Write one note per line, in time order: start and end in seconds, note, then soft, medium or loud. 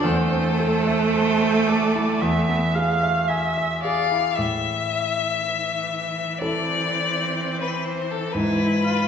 0.03 2.17 E2 medium
0.03 3.29 A3 loud
0.03 3.24 A4 medium
0.03 1.01 C5 medium
0.32 0.76 C4 medium
0.60 1.04 A4 medium
0.87 1.31 E5 medium
1.14 1.69 C5 medium
1.14 1.57 A5 medium
1.41 1.84 E5 medium
1.68 2.11 A4 medium
1.68 2.22 D5 medium
1.95 2.22 E4 medium
2.21 4.32 E2 medium
2.21 2.76 E5 medium
2.49 2.92 B3 medium
2.74 3.18 G#4 medium
2.74 3.29 F5 medium
3.03 3.46 E5 medium
3.28 3.83 E5 medium
3.28 3.73 G#5 medium
3.58 4.00 E5 medium
3.82 4.27 G#4 medium
3.82 4.35 D5 medium
3.82 4.37 F5 medium
4.12 4.37 E4 medium
4.35 8.31 A2 medium
4.35 9.08 E3 medium
4.35 6.40 E5 medium
6.39 8.29 C4 medium
6.39 8.30 C4 soft
6.39 8.30 E4 soft
6.39 8.31 A4 medium
6.39 7.61 D5 medium
7.61 7.86 B4 medium
7.85 8.12 C5 medium
8.11 8.34 A4 medium
8.32 9.08 G#2 medium
8.32 8.85 E4 medium
8.32 9.08 B4 loud
8.84 9.08 F4 medium